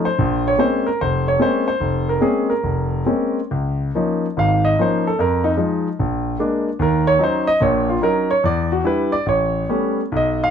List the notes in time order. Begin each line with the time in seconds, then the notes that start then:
0.05 C5
0.19 A#1
0.48 C#5
0.58 G#3 A#3 C4 C#4 C5
0.87 A#4
1.01 F1 C5
1.28 C#5
1.40 G#3 A#3 C4 C#4 C5
1.68 C5
1.80 F1
2.09 A#4
2.21 G#3 A#3 C4 C#4 G#4
2.50 A#4
2.63 F1
3.06 G#3 A#3 C4 C#4
3.51 C#2
3.95 F3 A#3 C#4 D#4
4.37 G#1 G#2 F5
4.65 D#5
4.79 F3 A#3 C#4 D#4 C5
5.07 A4
5.19 F2 A#4
5.44 D#4
5.57 F3 G#3 D#4
5.99 A#1
6.39 G#3 A#3 D4
6.79 D#2 A#4
7.07 C#5
7.19 F#3 C#4 D#4
7.24 C5
7.47 D#5
7.60 A#1 A#2 C#5
7.89 F4
8.02 F#3 C#4 D#4 A#4
8.31 C#5
8.44 E2 D5
8.72 F#4
8.84 G3 D4 E4 B4
9.12 D5
9.26 A1 C#5
9.69 G3 A3 B3 C#4
10.12 B1
10.17 D#5
10.44 F5